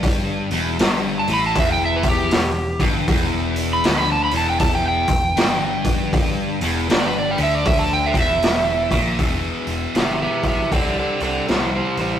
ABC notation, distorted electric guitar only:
X:1
M:4/4
L:1/8
Q:"Swing" 1/4=79
K:Em
V:1 name="Distorted electric guitar" clef=bass
G,, E,, G,, A,, E,,2 E,, G,, | E,,2 D, E,,2 E,, G,,2- | G,, E,, G,, D,2 E,,2 ^A,, | [E,,B,,E,]4 [C,G,C]4 |]